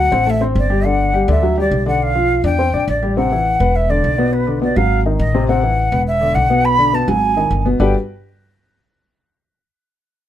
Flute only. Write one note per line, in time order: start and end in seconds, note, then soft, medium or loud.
0.00 0.31 F#5 medium
0.30 0.43 E5 medium
0.58 0.88 D5 medium
0.86 1.29 F#5 medium
1.31 1.57 E5 medium
1.60 1.86 D5 medium
1.87 2.04 F#5 medium
2.02 2.45 F5 medium
2.45 2.85 G5 medium
2.88 3.15 D5 medium
3.16 3.77 F#5 medium
3.76 3.92 E5 medium
3.90 4.34 D5 medium
4.33 4.62 B4 medium
4.63 4.78 D5 medium
4.76 5.00 F5 medium
5.19 5.46 D#5 medium
5.48 6.02 F#5 medium
6.07 6.36 E5 loud
6.35 6.66 F#5 medium
6.65 6.96 B5 medium
6.94 7.10 A5 medium
7.08 7.66 G#5 medium
7.82 7.94 G5 medium